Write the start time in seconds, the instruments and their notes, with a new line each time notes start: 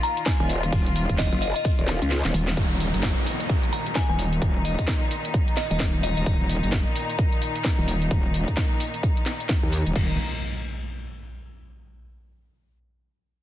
Already playing: string section A#2 D#3 F4
0.03 synth bell A#5, open hi-hat, shaker
0.17 closed hi-hat, shaker
0.26 synth bell G#5, kick, snare, closed hi-hat, ride, shaker
0.40 wobble bass D#1, synth bell G#5, shaker
0.49 open hi-hat, shaker
0.63 closed hi-hat, shaker
0.72 wobble bass D#1, kick, closed hi-hat, ride, shaker
0.86 closed hi-hat, shaker
0.96 open hi-hat, shaker
1.09 wobble bass D#1, kick, closed hi-hat, shaker
1.18 synth bell D#5, kick, snare, closed hi-hat, ride, shaker
1.32 wobble bass F#1, closed hi-hat, shaker
1.42 synth bell D#5, open hi-hat, shaker
1.56 synth bell D#5, closed hi-hat, shaker
1.65 kick, closed hi-hat, ride, shaker
1.79 wobble bass D#1, closed hi-hat, shaker
1.88 snare, open hi-hat, shaker
2.02 wobble bass C#2, closed hi-hat, shaker
2.11 snare, closed hi-hat, ride, shaker
2.25 wobble bass D#1, snare, closed hi-hat, shaker
2.34 wobble bass D#1, open hi-hat, shaker
2.48 snare, closed hi-hat, shaker
2.57 wobble bass D#1, string section A#2 D#3 D#4, kick, closed hi-hat, downlifter, shaker
2.72 shaker
2.80 open hi-hat, shaker
2.94 wobble bass F#1, closed hi-hat, shaker
3.03 kick, snare, closed hi-hat, shaker
3.18 shaker
3.26 open hi-hat, shaker
3.40 closed hi-hat, shaker
3.49 kick, closed hi-hat, shaker
3.63 closed hi-hat, shaker
3.73 synth bell A#5, open hi-hat, shaker
3.86 closed hi-hat, shaker
3.95 synth bell G#5, kick, snare, closed hi-hat, shaker
4.09 wobble bass D#1, synth bell G#5, shaker
4.19 open hi-hat, shaker
4.33 closed hi-hat, shaker
4.42 wobble bass D#1, kick, closed hi-hat, shaker
4.56 shaker
4.65 synth bell D#5, open hi-hat, shaker
4.79 kick, closed hi-hat, shaker
4.88 kick, snare, closed hi-hat, shaker
5.02 shaker
5.11 open hi-hat, shaker
5.25 closed hi-hat, shaker
5.34 kick, closed hi-hat, shaker
5.48 closed hi-hat, shaker
5.57 synth bell D#5, snare, open hi-hat, shaker
5.71 wobble bass D#1, synth bell D#5, closed hi-hat, shaker
5.80 kick, snare, closed hi-hat, shaker
5.95 shaker
6.03 synth bell D#5, open hi-hat, shaker
6.17 wobble bass D#1, synth bell D#5, closed hi-hat, shaker
6.26 wobble bass D#1, kick, closed hi-hat, shaker
6.41 shaker
6.49 open hi-hat, shaker
6.63 wobble bass F#1, closed hi-hat, shaker
6.72 kick, snare, closed hi-hat, shaker
6.87 shaker
6.96 open hi-hat, shaker
7.09 closed hi-hat, shaker
7.19 kick, closed hi-hat, shaker
7.33 closed hi-hat, shaker
7.42 open hi-hat, shaker
7.56 closed hi-hat, shaker
7.65 kick, snare, closed hi-hat, shaker
7.79 wobble bass D#1, shaker
7.88 open hi-hat, shaker
8.02 closed hi-hat, shaker
8.11 wobble bass D#1, kick, closed hi-hat, shaker
8.26 shaker
8.34 open hi-hat, shaker
8.48 kick, closed hi-hat, shaker
8.57 kick, snare, closed hi-hat, shaker
8.72 shaker
8.80 open hi-hat, shaker
8.94 closed hi-hat, shaker
9.03 kick, closed hi-hat, shaker
9.17 closed hi-hat, shaker
9.26 snare, open hi-hat, shaker
9.40 closed hi-hat, shaker
9.49 kick, snare, closed hi-hat, shaker
9.63 wobble bass D#2, shaker
9.73 open hi-hat, shaker
9.86 wobble bass D#1, closed hi-hat, shaker
9.96 wobble bass D#1, string section A#2 D#3 D#4, kick, crash, impact